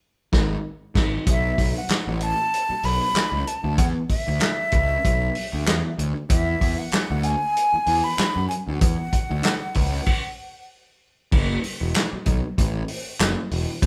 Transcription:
0.33 picked electric bass G#1, kick, snare
0.95 picked electric bass G#1, kick, snare, crash
1.27 picked electric bass B1, flute E5, kick, closed hi-hat
1.58 picked electric bass B1, kick, open hi-hat
1.78 flute F#5
1.89 muted picked electric bass stroke, snare, clap, closed hi-hat
2.07 picked electric bass A1
2.21 flute A5, closed hi-hat
2.54 closed hi-hat
2.70 muted picked electric bass stroke
2.83 picked electric bass B1, flute B5, open hi-hat
3.14 muted picked electric bass stroke, snare, clap, closed hi-hat
3.32 picked electric bass C#2
3.47 flute A5, closed hi-hat
3.64 picked electric bass D2
3.78 picked electric bass E2, flute F#5, kick, closed hi-hat
4.09 flute E5, kick, open hi-hat
4.28 picked electric bass D2
4.40 snare, clap, closed hi-hat
4.72 picked electric bass C#2, kick, closed hi-hat
5.05 picked electric bass B1, kick, closed hi-hat
5.35 open hi-hat
5.53 picked electric bass D2
5.67 picked electric bass E2, snare, clap, closed hi-hat
5.99 picked electric bass D2, closed hi-hat
6.30 picked electric bass E2, flute E5, kick, closed hi-hat
6.61 picked electric bass E2, kick, open hi-hat
6.79 flute F#5
6.92 muted picked electric bass stroke, snare, clap, closed hi-hat
7.11 picked electric bass D2
7.23 flute G#5, closed hi-hat
7.57 closed hi-hat
7.74 muted picked electric bass stroke
7.86 picked electric bass E2, open hi-hat
8.04 flute B5
8.18 muted picked electric bass stroke, snare, clap, closed hi-hat
8.36 picked electric bass F#2
8.48 flute G#5, closed hi-hat
8.67 picked electric bass D2, flute F#5
8.81 picked electric bass E2, kick, closed hi-hat
9.13 kick, closed hi-hat
9.30 picked electric bass D2
9.43 snare, clap, closed hi-hat
9.74 picked electric bass C#2, kick, open hi-hat
10.06 kick, crash
11.32 picked electric bass F#1, kick, crash
11.64 open hi-hat
11.81 picked electric bass E1
11.94 snare, clap, closed hi-hat
12.13 muted picked electric bass stroke
12.26 picked electric bass B1, kick, closed hi-hat
12.58 picked electric bass A1, kick, closed hi-hat
12.88 open hi-hat
13.20 picked electric bass F#1, snare, clap, closed hi-hat
13.51 picked electric bass E1, open hi-hat
13.82 picked electric bass F#1, kick, closed hi-hat

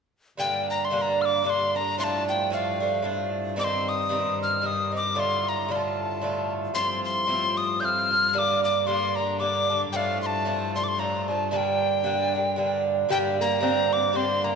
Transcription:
0.37 bouzouki G2 D3 A#3 D4, cello G2, tin whistle G5
0.70 tin whistle A#5
0.85 tin whistle C6
0.90 bouzouki G2 D3 A#3 D4
1.02 tin whistle A#5
1.22 tin whistle D6 F6
1.44 bouzouki G2 D3 A#3 D4, tin whistle D6
1.50 tin whistle C6
1.75 bouzouki D3 A#3 D4, tin whistle A#5
1.98 bouzouki A2 F3 A3 D4, tin whistle C6
2.04 tin whistle A5
2.29 tin whistle G5
2.50 bouzouki A2 F3 A3 D4, tin whistle F5
2.80 bouzouki F3 A3 D4
3.02 bouzouki A2 F3 A3 D4
3.56 bouzouki G2 D#3 C4 D#4, tin whistle D6
3.64 tin whistle C6
3.89 tin whistle D#6
4.09 bouzouki G2 D#3 C4 D#4
4.43 tin whistle F6
4.62 bouzouki G2 D#3 C4 D#4
4.66 tin whistle D#6
4.92 bouzouki D#3 C4 D#4
4.96 tin whistle D6
5.15 bouzouki A2 D3 A3 F4
5.19 tin whistle C6
5.49 tin whistle A#5
5.68 bouzouki A2 D3 A3 F4, tin whistle C6
5.76 tin whistle A5
6.22 bouzouki A2 D3 A3 F4
6.74 cello G2, bouzouki A2 F3 C4 F4, tin whistle C6
7.04 tin whistle C6
7.27 bouzouki A2 F3 C4 F4
7.57 tin whistle D#6
7.80 bouzouki A2 F3 C4 F4, tin whistle G6
7.85 tin whistle F6
8.10 bouzouki F3 C4 F4
8.33 bouzouki G2 D3 A#3 D4, tin whistle F6
8.38 tin whistle D6
8.64 tin whistle D6
8.87 bouzouki G2 D3 A#3 D4, tin whistle C6
9.16 bouzouki D3 A#3 D4, tin whistle A#5
9.40 bouzouki G2 D3 A#3 D4, tin whistle D6
9.70 bouzouki D3 A#3 D4
9.93 bouzouki A2 F3 A3 D4, tin whistle F5 G5
10.22 tin whistle A5 C6
10.45 bouzouki A2 F3 A3 D4
10.75 bouzouki F3 A3 D4, tin whistle C6
10.84 tin whistle D6
10.88 tin whistle C6
10.98 bouzouki A2 F3 A3 D4, tin whistle A#5
11.28 bouzouki F3 A3 D4, tin whistle A5
11.51 bouzouki G2 D3 A#3 D4, tin whistle A5
11.57 tin whistle G5
12.04 bouzouki G2 D3 A#3 D4
12.33 bouzouki D3 A#3 D4
12.56 bouzouki G2 D3 A#3 D4
13.09 bouzouki G2 D3 A#3 D4, cello G2, resonator guitar played with a steel bar G3, tin whistle G5
13.41 resonator guitar played with a steel bar A#3, tin whistle A#5
13.60 bouzouki G2 D3 A#3 D4, resonator guitar played with a steel bar C4
13.93 tin whistle D6
14.13 bouzouki G2 D3 A#3 D4, resonator guitar played with a steel bar C4, tin whistle C6
14.44 resonator guitar played with a steel bar A#3, tin whistle A#5

